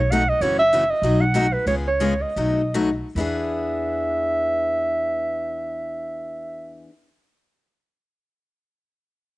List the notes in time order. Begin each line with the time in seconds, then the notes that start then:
Already playing: B1 C#5
0.11 B2 F#3 A3 D#4 F#4 F#5
0.29 D#5
0.41 F#1 C#3 E3 A3 C#4 F#4 C#5
0.59 E5
0.73 C#3 E3 A3 C#4 F#4
0.90 D#5
1.02 B1 B2 F#3 A3 D#4 F#4
1.21 F#5
1.34 B2 F#3 A3 D#4 F#4
1.53 B4
1.66 C#2 C#3 G#3 B3 F4 G#4 C#5
1.88 C#5
2.00 C#3 G#3 B3 F4 G#4
2.22 D#5
2.36 B1 B2 F#3 A3 D#4 F#4
2.74 B2 F#3 A3 D#4 F#4
3.15 E2 E3 B3 D4 E5
3.20 G#4